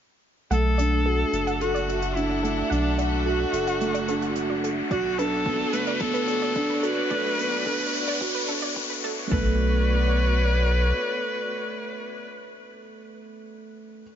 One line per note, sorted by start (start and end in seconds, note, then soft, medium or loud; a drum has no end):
0.50 1.25 B1 medium
0.50 0.77 A3 medium
0.50 6.68 D4 medium
0.50 1.63 A4 loud
0.50 0.58 F#5 loud
0.50 closed hi-hat soft
0.50 riser medium
0.74 0.83 D5 medium
0.74 6.69 F#5 medium
0.79 1.05 D4 medium
0.79 closed hi-hat medium
0.84 5.90 A4 medium
1.06 1.32 F#4 medium
1.06 1.13 A4 medium
1.14 5.87 E5 medium
1.33 2.62 F#1 medium
1.33 closed hi-hat medium
1.47 1.52 F#5 loud
1.47 closed hi-hat soft
1.61 2.17 F#4 medium
1.61 1.87 A4 medium
1.61 closed hi-hat soft
1.75 1.82 D5 medium
1.75 closed hi-hat soft
1.88 2.15 F#4 medium
1.88 1.94 A4 medium
1.88 closed hi-hat medium
2.02 2.05 F#5 medium
2.02 closed hi-hat soft
2.16 2.42 D4 medium
2.16 2.73 E4 medium
2.16 closed hi-hat medium
2.29 2.33 D5 medium
2.43 2.70 A3 medium
2.43 2.46 A4 medium
2.43 closed hi-hat medium
2.70 3.45 B1 medium
2.70 2.87 D4 medium
2.70 3.01 D4 medium
2.70 2.78 F#5 loud
2.70 closed hi-hat medium
2.98 4.64 F#4 medium
2.98 3.03 D5 medium
2.98 closed hi-hat medium
3.26 3.52 F#4 medium
3.26 3.34 A4 medium
3.53 4.82 F#1 medium
3.53 3.79 A4 medium
3.53 closed hi-hat medium
3.67 3.72 F#5 medium
3.67 closed hi-hat soft
3.81 4.07 A3 loud
3.81 closed hi-hat soft
3.94 4.02 D5 loud
3.94 closed hi-hat medium
4.08 4.35 D4 medium
4.08 4.14 A4 medium
4.08 closed hi-hat medium
4.22 4.25 F#5 medium
4.22 closed hi-hat soft
4.36 4.62 F#4 medium
4.36 closed hi-hat medium
4.50 4.53 D5 medium
4.64 4.67 A4 medium
4.64 closed hi-hat medium
4.90 5.65 B1 loud
4.90 9.30 B3 medium
4.90 5.17 F#4 medium
4.90 5.19 F#4 loud
4.90 4.99 D5 medium
4.90 kick loud
4.90 closed hi-hat medium
5.18 5.45 D4 medium
5.18 5.75 A4 loud
5.18 5.24 B4 medium
5.18 closed hi-hat medium
5.22 9.31 F#4 medium
5.46 5.72 B3 medium
5.46 5.54 A4 medium
5.46 kick loud
5.54 9.31 D5 medium
5.71 7.02 F#1 loud
5.71 5.99 A3 medium
5.71 6.02 B4 loud
5.71 9.31 C#5 medium
5.71 closed hi-hat medium
5.87 5.92 D5 medium
5.87 closed hi-hat soft
6.00 6.17 B3 medium
6.00 6.86 A4 loud
6.00 kick loud
6.00 closed hi-hat medium
6.14 6.22 B4 loud
6.14 closed hi-hat medium
6.28 6.33 A4 medium
6.28 closed hi-hat medium
6.41 6.45 D5 medium
6.41 closed hi-hat soft
6.55 6.82 D4 loud
6.55 kick loud
6.55 closed hi-hat medium
6.70 6.73 B4 medium
6.83 7.09 F#4 loud
6.83 6.86 A4 medium
6.83 8.49 B4 loud
6.83 closed hi-hat medium
7.10 7.85 B1 loud
7.10 7.37 A3 loud
7.10 7.19 D5 loud
7.10 kick loud
7.10 closed hi-hat medium
7.38 7.65 B3 medium
7.38 7.44 B4 medium
7.38 closed hi-hat medium
7.66 7.92 D4 medium
7.66 7.74 A4 medium
7.66 kick loud
7.93 8.48 F#1 medium
7.93 closed hi-hat medium
8.07 8.13 D5 loud
8.07 closed hi-hat soft
8.21 8.47 F#4 loud
8.21 kick loud
8.21 closed hi-hat medium
8.35 8.43 B4 loud
8.35 closed hi-hat medium
8.48 8.65 F#1 loud
8.48 8.75 D4 medium
8.48 8.54 A4 medium
8.48 closed hi-hat medium
8.62 8.66 D5 medium
8.62 closed hi-hat medium
8.76 9.02 B3 medium
8.76 kick loud
8.76 closed hi-hat medium
8.90 8.93 B4 medium
9.04 9.30 A3 medium
9.04 9.07 A4 medium
9.04 closed hi-hat medium
9.31 10.93 B1 loud
9.31 9.57 A3 loud
9.31 12.28 B3 medium
9.31 9.57 A4 medium
9.31 12.27 B4 loud
9.31 kick loud
9.40 12.28 F#4 medium
9.48 12.28 C#5 medium
9.55 12.27 D5 medium